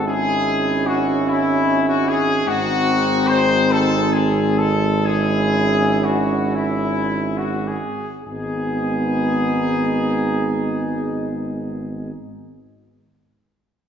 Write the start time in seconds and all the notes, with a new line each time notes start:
Already playing: G#1 G#3
0.05 C#4 E4 G#4
0.87 F#4
1.28 E4
1.89 F#4
2.08 G#4
2.46 G#1 G#3 C4 D#4 F#4
3.27 C5
3.71 A4
4.12 G#4
4.58 A4
5.04 C#4 E4 G#4
6.04 F#4
6.55 E4
7.38 F#4
7.67 G#4
8.25 G#1 G#3 B3 D#4 G#4